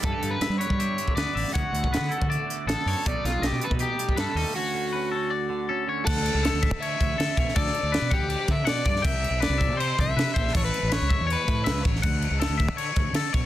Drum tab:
CC |----------------|----------------|----------------|----------------|
HH |x-x-x-x-x-x-x-o-|x-x-x-x-x-x-x-o-|x-x-x-x-x-x-x-o-|----------------|
SD |----o-------o--o|----oo------o---|--o-o-------o---|----------------|
BD |o------o---o----|o--o---o--------|o------o---o----|----------------|

CC |x-x-x-x-x-x-x-x-|x-x-x-x-x-x-x-x-|x-x-x-x-x-x-x-x-|x-x-x-x-x-x-x-x-|
HH |----------------|----------------|----------------|----------------|
SD |-o--o-------o--o|-o--o-------o--o|----o-------o--o|----o-------o--o|
BD |o-----o---o---o-|o-----o---o---o-|o-----o---o---o-|o-----o---o---o-|

CC |x-x-x-x-x-x-x-x-|
HH |----------------|
SD |----o-------o---|
BD |o-----o---o---o-|